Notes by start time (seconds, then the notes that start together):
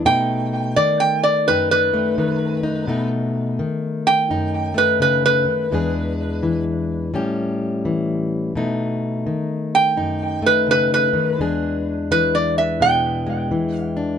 0.05 B2 A3 D#4 G5
0.76 D#3 D5
1.00 G5
1.23 D5
1.48 F#2 D#4 B4
1.71 B4
1.94 A3
2.18 D#3
2.63 D#4
2.87 B2 A3 D#4
3.59 D#3
4.07 G5
4.30 F#2 D#4
4.74 A3 B4
5.00 C#3 B4
5.26 B4
5.45 D#3
5.72 E2 G#3 D4 G#4
6.43 E3
7.14 A2 G3 C#4 G4
7.85 E3
8.55 B2 A3 D#4
9.26 D#3
9.75 G5
9.97 F#2 D#4
10.42 A3
10.46 B4
10.67 C#3
10.71 B4
10.94 B4
11.13 D#3
11.39 E2 G#3 D4 G#4
12.11 E3 B4
12.35 D5
12.58 E5
12.80 B2 G#4 G5
13.27 G#3
13.51 E3
13.76 F5
13.97 D4